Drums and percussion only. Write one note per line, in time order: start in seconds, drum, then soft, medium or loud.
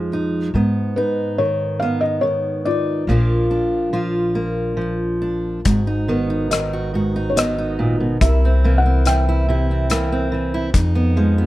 5.65 kick medium
5.65 closed hi-hat soft
6.51 cross-stick medium
6.51 closed hi-hat soft
7.37 cross-stick medium
7.37 closed hi-hat soft
8.21 kick medium
8.21 closed hi-hat soft
9.06 cross-stick medium
9.06 closed hi-hat soft
9.90 cross-stick medium
9.90 closed hi-hat soft
10.74 kick medium
10.74 closed hi-hat soft